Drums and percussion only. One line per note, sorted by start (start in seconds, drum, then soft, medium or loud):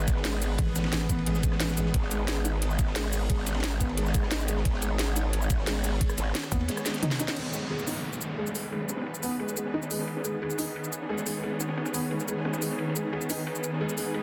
0.08 kick loud
0.08 closed hi-hat medium
0.08 ride medium
0.08 cabasa medium
0.17 snare soft
0.25 snare loud
0.25 closed hi-hat medium
0.25 open hi-hat medium
0.33 cross-stick soft
0.33 snare soft
0.42 closed hi-hat medium
0.42 ride medium
0.42 cabasa medium
0.58 kick loud
0.58 closed hi-hat medium
0.58 ride medium
0.67 snare soft
0.76 snare loud
0.76 closed hi-hat medium
0.76 ride medium
0.76 cabasa medium
0.84 snare loud
0.84 ride medium
0.92 snare loud
0.92 closed hi-hat medium
0.92 ride medium
1.01 cross-stick soft
1.01 snare loud
1.01 ride medium
1.09 kick medium
1.09 closed hi-hat medium
1.09 ride medium
1.09 cabasa medium
1.19 ride soft
1.26 closed hi-hat medium
1.26 ride medium
1.35 snare soft
1.35 cabasa soft
1.43 kick loud
1.43 closed hi-hat medium
1.43 ride medium
1.43 cabasa medium
1.52 cross-stick soft
1.52 snare soft
1.60 snare loud
1.60 closed hi-hat medium
1.60 ride medium
1.69 snare medium
1.69 ride medium
1.69 cabasa soft
1.73 snare medium
1.73 ride medium
1.77 closed hi-hat medium
1.77 ride medium
1.77 cabasa medium
1.86 snare soft
1.94 kick loud
1.94 closed hi-hat medium
1.94 ride medium
2.02 snare soft
2.11 closed hi-hat medium
2.11 ride medium
2.11 cabasa medium
2.28 snare loud
2.28 closed hi-hat medium
2.28 ride medium
2.37 cross-stick soft
2.45 closed hi-hat medium
2.45 ride medium
2.45 cabasa medium
2.62 closed hi-hat medium
2.62 ride medium
2.70 cabasa soft
2.79 kick loud
2.79 closed hi-hat medium
2.79 ride medium
2.79 cabasa medium
2.87 snare soft
2.95 snare loud
2.95 closed hi-hat medium
2.95 open hi-hat medium
3.04 cross-stick soft
3.04 snare soft
3.13 closed hi-hat medium
3.13 ride medium
3.13 cabasa medium
3.30 kick loud
3.30 closed hi-hat medium
3.30 ride medium
3.37 snare soft
3.46 snare medium
3.46 closed hi-hat medium
3.46 ride medium
3.46 cabasa medium
3.54 snare medium
3.54 ride medium
3.59 snare medium
3.59 ride medium
3.63 snare loud
3.63 closed hi-hat medium
3.63 ride medium
3.72 cross-stick soft
3.81 kick medium
3.81 closed hi-hat medium
3.81 ride medium
3.81 cabasa medium
3.89 ride soft
3.97 closed hi-hat medium
3.97 ride medium
4.06 snare soft
4.06 cabasa soft
4.14 kick loud
4.14 closed hi-hat medium
4.14 ride medium
4.14 cabasa medium
4.23 cross-stick soft
4.23 snare soft
4.31 snare loud
4.31 closed hi-hat medium
4.31 ride medium
4.40 snare medium
4.40 cabasa soft
4.48 closed hi-hat medium
4.48 ride medium
4.48 cabasa medium
4.56 snare soft
4.65 kick loud
4.65 closed hi-hat loud
4.65 ride medium
4.74 snare medium
4.82 closed hi-hat medium
4.82 ride medium
4.82 cabasa medium
4.99 snare loud
4.99 closed hi-hat medium
4.99 ride medium
5.08 cross-stick soft
5.16 closed hi-hat medium
5.16 ride medium
5.16 cabasa medium
5.33 closed hi-hat loud
5.33 ride medium
5.42 cabasa soft
5.50 kick loud
5.50 closed hi-hat medium
5.50 ride medium
5.50 cabasa medium
5.58 snare soft
5.67 snare loud
5.67 closed hi-hat loud
5.67 open hi-hat medium
5.76 cross-stick soft
5.76 snare soft
5.84 snare loud
5.84 closed hi-hat medium
5.84 ride medium
5.84 cabasa medium
6.01 kick loud
6.01 closed hi-hat loud
6.01 ride medium
6.09 cross-stick medium
6.09 cabasa soft
6.18 closed hi-hat medium
6.18 ride medium
6.18 cabasa medium
6.35 snare loud
6.35 closed hi-hat loud
6.35 ride medium
6.43 cross-stick soft
6.43 snare loud
6.43 ride medium
6.43 cabasa soft
6.52 kick medium
6.52 closed hi-hat medium
6.52 ride medium
6.52 cabasa medium
6.61 ride soft
6.68 snare loud
6.68 closed hi-hat loud
6.68 ride medium
6.77 cross-stick medium
6.77 snare soft
6.77 closed hi-hat soft
6.77 cabasa soft
6.86 snare medium
6.86 snare loud
6.86 closed hi-hat medium
6.86 ride medium
6.86 cabasa medium
6.94 snare loud
6.94 closed hi-hat soft
6.94 ride medium
6.98 snare medium
6.98 ride medium
7.02 snare loud
7.02 closed hi-hat loud
7.02 mid tom medium
7.02 ride medium
7.11 snare medium
7.11 cabasa soft
7.19 snare loud
7.19 closed hi-hat medium
7.19 ride medium
7.19 cabasa medium
7.27 snare soft
7.27 snare medium
7.27 closed hi-hat soft
7.36 ride medium
7.36 crash medium
7.45 snare soft
7.53 ride medium
7.53 cabasa medium
7.71 ride medium
7.79 cabasa soft
7.87 open hi-hat medium
7.87 ride medium
7.87 cabasa medium
8.04 ride medium
8.13 cabasa soft
8.21 ride medium
8.21 cabasa medium
8.29 snare soft
8.38 open hi-hat medium
8.47 snare soft
8.47 cabasa soft
8.55 open hi-hat medium
8.55 ride medium
8.55 cabasa medium
8.72 ride medium
8.81 snare soft
8.89 snare medium
8.89 ride medium
8.89 cabasa medium
8.97 snare medium
8.97 ride medium
9.02 snare medium
9.02 ride medium
9.06 ride medium
9.14 cabasa soft
9.23 open hi-hat medium
9.23 ride medium
9.23 cabasa medium
9.31 ride soft
9.40 ride medium
9.48 snare soft
9.48 cabasa soft
9.57 ride medium
9.57 cabasa medium
9.65 snare soft
9.74 ride medium
9.82 snare medium
9.82 cabasa soft
9.91 open hi-hat medium
9.91 ride medium
9.91 cabasa medium
9.99 snare medium
10.07 ride medium
10.17 snare medium
10.25 ride medium
10.25 cabasa medium
10.43 ride medium
10.50 cabasa soft
10.58 open hi-hat medium
10.58 ride medium
10.58 cabasa medium
10.76 ride medium
10.84 cabasa soft
10.93 ride medium
10.93 cabasa medium
11.01 snare soft
11.09 open hi-hat medium
11.18 snare soft
11.18 cabasa soft
11.26 open hi-hat medium
11.26 ride medium
11.26 cabasa medium
11.43 ride medium
11.51 snare soft
11.60 snare medium
11.60 ride medium
11.60 cabasa medium
11.69 snare medium
11.69 ride medium
11.77 snare loud
11.77 ride medium
11.85 snare loud
11.85 ride medium
11.85 cabasa soft
11.94 open hi-hat medium
11.94 ride medium
11.94 cabasa medium
12.03 ride soft
12.11 ride medium
12.20 snare soft
12.20 cabasa soft
12.28 ride medium
12.28 cabasa medium
12.37 snare soft
12.45 snare loud
12.45 ride medium
12.53 snare medium
12.53 ride medium
12.53 cabasa soft
12.58 snare medium
12.58 ride medium
12.62 open hi-hat medium
12.62 ride medium
12.62 cabasa medium
12.70 snare medium
12.79 ride medium
12.88 snare soft
12.96 ride medium
12.96 cabasa medium
13.13 ride medium
13.21 cabasa soft
13.30 open hi-hat medium
13.30 ride medium
13.30 cabasa medium
13.47 ride medium
13.55 cabasa soft
13.64 ride medium
13.64 cabasa medium
13.73 snare soft
13.81 open hi-hat medium
13.89 snare soft
13.89 cabasa soft
13.98 open hi-hat medium
13.98 ride medium
13.98 cabasa medium
14.14 ride medium